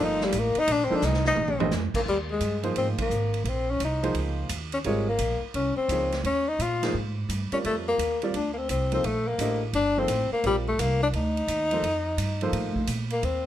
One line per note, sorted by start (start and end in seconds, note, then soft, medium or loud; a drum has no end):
0.00 0.32 G1 medium
0.00 0.31 F3 medium
0.00 0.31 A#3 medium
0.00 0.31 D#4 medium
0.00 0.26 D#4 loud
0.00 0.31 A4 medium
0.00 0.32 C5 medium
0.21 0.40 G3 medium
0.21 snare medium
0.32 0.54 A1 medium
0.32 hi-hat pedal medium
0.32 ride medium
0.39 0.61 A#3 medium
0.55 muted upright bass stroke soft
0.55 ride soft
0.59 0.74 D#4 loud
0.67 0.89 A#1 medium
0.67 ride medium
0.72 0.86 D4 loud
0.84 0.97 C4 medium
0.90 1.01 F3 medium
0.90 1.01 A#3 medium
0.90 1.02 D#4 medium
0.90 1.02 A4 medium
0.90 1.02 C5 medium
0.90 muted upright bass stroke soft
0.95 1.06 D4 medium
1.02 1.36 C2 medium
1.02 1.26 D#4 medium
1.02 snare medium
1.02 hi-hat pedal medium
1.14 snare medium
1.25 1.70 D#4 medium
1.25 snare medium
1.36 1.71 A#1 medium
1.36 mid tom medium
1.48 mid tom medium
1.60 1.71 A3 medium
1.60 1.71 D4 medium
1.60 1.71 G4 medium
1.60 1.71 C5 medium
1.60 1.71 D#5 medium
1.60 floor tom medium
1.71 1.93 F2 loud
1.71 snare medium
1.71 hi-hat pedal medium
1.94 2.01 A#3 medium
1.94 muted upright bass stroke soft
1.94 kick medium
1.94 crash medium
2.06 2.40 D#2 medium
2.06 2.18 G3 medium
2.31 2.63 G#3 medium
2.40 2.75 G2 medium
2.40 hi-hat pedal medium
2.40 ride medium
2.63 3.08 F3 medium
2.63 3.08 A#3 medium
2.63 3.08 D#4 medium
2.63 3.09 G#4 medium
2.63 3.09 C5 medium
2.63 ride soft
2.76 2.97 G#2 medium
2.76 2.88 C4 medium
2.76 ride medium
2.98 3.41 A#3 medium
2.98 kick medium
2.98 ride medium
3.10 3.44 G#1 medium
3.10 hi-hat pedal soft
3.34 ride soft
3.44 3.79 A#1 medium
3.44 3.50 A#3 medium
3.44 ride soft
3.49 3.72 C4 medium
3.71 3.82 C#4 loud
3.80 4.13 C2 medium
3.80 hi-hat pedal medium
3.80 ride medium
3.85 4.15 D#4 medium
4.03 4.48 F3 medium
4.03 4.48 A#3 medium
4.03 4.48 D#4 medium
4.03 4.48 G#4 medium
4.03 4.48 C5 medium
4.03 ride soft
4.14 4.49 C#2 medium
4.14 ride medium
4.49 4.84 D#2 medium
4.49 hi-hat pedal medium
4.49 ride medium
4.72 4.79 C#4 medium
4.72 ride soft
4.84 5.18 G#1 medium
4.84 5.05 G3 medium
4.84 5.07 G#3 medium
4.84 5.06 C4 medium
4.84 5.06 F4 medium
4.84 5.06 A#4 medium
4.84 5.06 C#5 medium
4.84 ride soft
5.09 5.41 A#3 medium
5.19 5.40 A#1 medium
5.19 hi-hat pedal medium
5.19 ride medium
5.42 muted upright bass stroke soft
5.54 5.76 C2 medium
5.54 5.76 C#4 medium
5.54 ride medium
5.77 6.21 C4 medium
5.77 muted upright bass stroke soft
5.89 6.23 C#2 medium
5.89 6.11 F3 medium
5.89 6.11 A#3 medium
5.89 6.11 D#4 medium
5.89 6.11 G#4 medium
5.89 6.11 C#5 medium
5.89 hi-hat pedal soft
5.89 ride medium
6.12 snare soft
6.12 ride soft
6.24 6.58 D#2 medium
6.24 6.50 C#4 loud
6.24 ride soft
6.48 6.63 D#4 medium
6.59 6.93 A#2 medium
6.59 6.96 F4 medium
6.59 hi-hat pedal medium
6.59 ride medium
6.83 6.93 F3 medium
6.83 6.94 A#3 medium
6.83 6.93 D#4 medium
6.83 6.94 G#4 medium
6.83 6.94 C5 medium
6.83 snare soft
6.83 ride medium
6.94 7.28 G#2 medium
7.29 7.50 G2 medium
7.29 hi-hat pedal medium
7.29 ride medium
7.52 7.97 G3 medium
7.52 7.97 C4 medium
7.52 7.58 C#4 medium
7.52 7.97 F4 medium
7.52 7.97 A#4 medium
7.52 7.97 D5 medium
7.52 muted upright bass stroke soft
7.52 ride soft
7.64 7.98 F2 medium
7.64 7.76 A3 medium
7.64 ride medium
7.88 8.20 A#3 medium
7.98 8.33 D#2 medium
7.98 hi-hat pedal soft
7.98 ride medium
8.22 8.34 G3 medium
8.22 8.34 C4 medium
8.22 8.34 F4 medium
8.22 8.34 A#4 medium
8.22 8.34 D5 medium
8.22 ride soft
8.34 8.68 D2 medium
8.34 8.51 D4 medium
8.34 ride medium
8.54 8.59 A#3 medium
8.54 8.70 C4 medium
8.69 9.03 C2 medium
8.69 8.91 C4 medium
8.69 hi-hat pedal medium
8.69 ride medium
8.92 9.03 F3 medium
8.92 9.03 A#3 medium
8.92 9.07 C4 medium
8.92 9.03 D#4 soft
8.92 9.04 A4 medium
8.92 9.04 C5 medium
8.92 ride soft
9.04 9.38 A#1 medium
9.04 9.29 A3 medium
9.04 ride medium
9.28 9.62 A#3 medium
9.38 9.73 A1 medium
9.38 9.60 A3 medium
9.38 9.60 D4 medium
9.38 9.60 G4 medium
9.38 9.61 C5 medium
9.38 9.61 D#5 medium
9.38 hi-hat pedal medium
9.38 ride medium
9.73 10.07 G1 medium
9.73 10.01 D4 loud
9.73 ride medium
9.97 10.08 F3 medium
9.97 10.08 A#3 medium
9.97 10.32 C4 medium
9.97 10.09 D#4 medium
9.97 10.09 A4 medium
9.97 10.09 C5 medium
10.08 10.29 A1 medium
10.08 hi-hat pedal medium
10.08 ride medium
10.31 10.44 A#3 medium
10.31 muted upright bass stroke soft
10.44 10.78 A#1 medium
10.44 10.65 G3 medium
10.44 10.56 G3 loud
10.44 10.65 C4 medium
10.44 10.65 F4 medium
10.44 10.65 A#4 medium
10.44 10.65 D5 medium
10.44 ride soft
10.68 10.82 A3 medium
10.79 11.12 C2 medium
10.79 11.02 A#3 medium
10.79 hi-hat pedal medium
10.79 ride medium
11.03 11.08 D4 medium
11.13 11.47 D2 medium
11.13 12.61 D#4 loud
11.13 ride medium
11.37 ride soft
11.47 11.82 D#2 medium
11.47 hi-hat pedal medium
11.47 ride medium
11.71 11.83 F3 medium
11.71 11.83 A#3 medium
11.71 11.83 D#4 medium
11.71 11.83 A4 medium
11.71 11.83 C5 medium
11.71 ride soft
11.82 12.17 F2 medium
11.82 ride medium
12.17 12.52 G2 medium
12.17 hi-hat pedal medium
12.17 ride medium
12.41 12.86 F3 medium
12.41 12.87 A#3 medium
12.41 12.87 D#4 medium
12.41 12.87 A4 medium
12.41 12.87 C5 medium
12.41 ride soft
12.52 12.74 A2 medium
12.52 ride medium
12.75 muted upright bass stroke soft
12.75 kick medium
12.87 13.22 A#2 medium
12.87 hi-hat pedal medium
12.87 ride medium
13.10 13.26 A#3 medium
13.10 ride soft
13.23 13.46 D#2 medium
13.23 13.46 C4 medium
13.23 ride soft